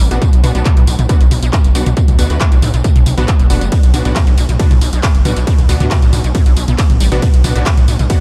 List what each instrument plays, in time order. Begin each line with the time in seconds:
0.11 analog synth bass A1, synth arpeggio sound B2, synth stab B3 D4 F#4, closed hi-hat, tambourine
0.22 synth arpeggio sound B2, kick, closed hi-hat, mid tom, tambourine
0.33 analog synth bass B1, closed hi-hat, tambourine
0.44 analog synth bass B1, synth arpeggio sound B2, synth stab B3 D4 F#4, mid tom, open hi-hat, tambourine
0.55 analog synth bass B1, synth arpeggio sound A2, synth stab B3 D4 F#4, closed hi-hat, tambourine
0.65 synth arpeggio sound C3, kick, clap, closed hi-hat, tambourine
0.77 analog synth bass B1, synth arpeggio sound A2, closed hi-hat, mid tom, tambourine
0.87 analog synth bass B1, synth arpeggio sound A2, open hi-hat, tambourine
0.99 analog synth bass B1, synth arpeggio sound B2, closed hi-hat, mid tom, tambourine
1.09 synth arpeggio sound C3, synth stab B3 D4 F#4, kick, closed hi-hat, tambourine
1.21 analog synth bass B1, synth arpeggio sound B2, closed hi-hat, tambourine
1.31 analog synth bass B1, synth arpeggio sound B2, mid tom, open hi-hat, tambourine
1.42 analog synth bass B1, synth arpeggio sound B2, closed hi-hat, tambourine
1.53 kick, clap, closed hi-hat, mid tom, tambourine
1.64 analog synth bass F#1, closed hi-hat, tambourine
1.75 analog synth bass B1, synth arpeggio sound G3, synth stab B3 D4 F#4, open hi-hat, tambourine
1.86 analog synth bass B1, synth arpeggio sound B2, closed hi-hat, mid tom, tambourine
1.97 synth arpeggio sound B2, kick, closed hi-hat, tambourine
2.08 analog synth bass D2, closed hi-hat, mid tom, tambourine
2.19 analog synth bass D2, synth arpeggio sound B2, synth stab B3 D4 F#4, open hi-hat, tambourine
2.30 analog synth bass D2, synth arpeggio sound A2, synth stab B3 D4 F#4, closed hi-hat, tambourine
2.41 synth arpeggio sound C3, kick, clap, closed hi-hat, mid tom, tambourine
2.52 analog synth bass B1, synth arpeggio sound A2, closed hi-hat, tambourine
2.62 analog synth bass B1, synth arpeggio sound A2, mid tom, open hi-hat, tambourine
2.74 analog synth bass B1, synth arpeggio sound B2, closed hi-hat, tambourine
2.84 synth arpeggio sound C3, kick, closed hi-hat, tambourine
2.96 analog synth bass B1, synth arpeggio sound B2, closed hi-hat, mid tom, tambourine
3.06 analog synth bass B1, synth arpeggio sound C3, open hi-hat, tambourine
3.18 analog synth bass B1, synth arpeggio sound B3, synth stab B3 D4 F#4, closed hi-hat, mid tom, tambourine
3.28 synth arpeggio sound F#3, kick, clap, closed hi-hat, tambourine
3.39 analog synth bass F#1, synth arpeggio sound B2, closed hi-hat, tambourine
3.50 analog synth bass F#1, synth arpeggio sound B3, synth stab B3 D4 F#4, mid tom, open hi-hat, tambourine
3.61 analog synth bass F#1, synth arpeggio sound G3, closed hi-hat, tambourine
3.72 synth arpeggio sound B2, kick, closed hi-hat, ride, tambourine
3.83 analog synth bass B1, closed hi-hat, tambourine
3.94 analog synth bass B1, synth arpeggio sound B2, synth stab B3 D4 F#4, mid tom, open hi-hat, tambourine
4.05 analog synth bass B1, synth arpeggio sound A2, synth stab B3 D4 F#4, closed hi-hat, tambourine
4.16 synth arpeggio sound C3, kick, clap, closed hi-hat, mid tom, ride, tambourine
4.27 analog synth bass B1, synth arpeggio sound A2, closed hi-hat, tambourine
4.38 analog synth bass B1, synth arpeggio sound A2, open hi-hat, tambourine
4.49 analog synth bass B1, synth arpeggio sound B2, closed hi-hat, mid tom, tambourine
4.59 synth arpeggio sound C3, synth stab B3 D4 F#4, kick, closed hi-hat, ride, tambourine
4.71 analog synth bass B1, synth arpeggio sound B2, closed hi-hat, mid tom, tambourine
4.81 analog synth bass B1, synth arpeggio sound B2, open hi-hat, tambourine
4.93 analog synth bass B1, synth arpeggio sound B2, closed hi-hat, tambourine
5.03 kick, clap, closed hi-hat, mid tom, ride, tambourine
5.15 analog synth bass F#1, closed hi-hat, tambourine
5.25 analog synth bass B1, synth arpeggio sound G3, synth stab B3 D4 F#4, mid tom, open hi-hat, tambourine
5.37 analog synth bass B1, synth arpeggio sound B2, closed hi-hat, tambourine
5.47 synth arpeggio sound B2, kick, closed hi-hat, ride, tambourine
5.58 analog synth bass D2, closed hi-hat, mid tom, tambourine
5.69 analog synth bass D2, synth arpeggio sound B2, synth stab B3 D4 F#4, open hi-hat, tambourine
5.80 analog synth bass D2, synth arpeggio sound A2, synth stab B3 D4 F#4, closed hi-hat, mid tom, tambourine
5.91 synth arpeggio sound C3, kick, clap, closed hi-hat, ride, tambourine
6.02 analog synth bass B1, synth arpeggio sound A2, closed hi-hat, tambourine
6.13 analog synth bass B1, synth arpeggio sound A2, mid tom, open hi-hat, tambourine
6.24 analog synth bass B1, synth arpeggio sound B2, closed hi-hat, tambourine
6.35 synth arpeggio sound C3, kick, closed hi-hat, mid tom, ride, tambourine
6.46 analog synth bass B1, synth arpeggio sound B2, closed hi-hat, tambourine
6.57 analog synth bass B1, synth arpeggio sound B2, open hi-hat, tambourine
6.68 analog synth bass B1, synth arpeggio sound B2, closed hi-hat, mid tom, tambourine
6.78 kick, clap, closed hi-hat, ride, tambourine
6.90 analog synth bass A1, closed hi-hat, mid tom, tambourine
7.00 analog synth bass A1, synth arpeggio sound G3, open hi-hat, tambourine
7.12 analog synth bass A1, synth arpeggio sound B2, synth stab B3 D4 F#4, closed hi-hat, tambourine
7.22 synth arpeggio sound B2, kick, closed hi-hat, mid tom, ride, tambourine
7.34 analog synth bass B1, closed hi-hat, tambourine
7.44 analog synth bass B1, synth arpeggio sound B2, synth stab B3 D4 F#4, mid tom, open hi-hat, tambourine
7.55 analog synth bass B1, synth arpeggio sound A2, synth stab B3 D4 F#4, closed hi-hat, tambourine
7.66 synth arpeggio sound C3, kick, clap, closed hi-hat, ride, tambourine
7.77 analog synth bass B1, synth arpeggio sound A2, closed hi-hat, mid tom, tambourine
7.88 analog synth bass B1, synth arpeggio sound A2, open hi-hat, tambourine
7.99 analog synth bass B1, synth arpeggio sound B2, closed hi-hat, mid tom, tambourine
8.10 synth arpeggio sound C3, synth stab B3 D4 F#4, kick, closed hi-hat, ride, tambourine